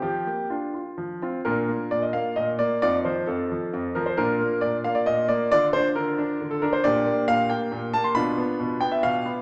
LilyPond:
<<
  \new Staff \with { instrumentName = "Grand piano" } { \time 3/4 \key bes \major \tempo 4 = 134 << { g'4 f'4 r4 | bes'4 d''16 ees''16 f''8 ees''8 d''8 | d''8 c''8 a'4. bes'16 c''16 | bes'4 d''8 f''16 d''16 ees''8 d''8 |
d''8 c''8 bes'4~ bes'16 a'16 bes'16 c''16 | \key g \dorian d''4 f''8 g''4 a''16 c'''16 | b''4. g''16 e''16 f''4 | } \\ { r2. | <d' f'>2. | <ees' f'>2. | <d' f'>2. |
<d' f'>2. | <d' g'>2. | <d' f'>2. | } >> }
  \new Staff \with { instrumentName = "Grand piano" } { \clef bass \time 3/4 \key bes \major f8 bes8 d'8 f'8 f8 <c' f'>8 | bes,8 bes8 bes,8 bes8 bes,8 bes8 | f,8 f8 f,8 f8 f,8 f8 | bes,8 bes8 bes,8 bes8 bes,8 bes8 |
d8 d'8 d8 d'8 d8 d'8 | \key g \dorian bes,8 bes8 bes,8 bes8 bes,8 bes8 | b,8 b8 b,8 b8 b,8 b8 | }
>>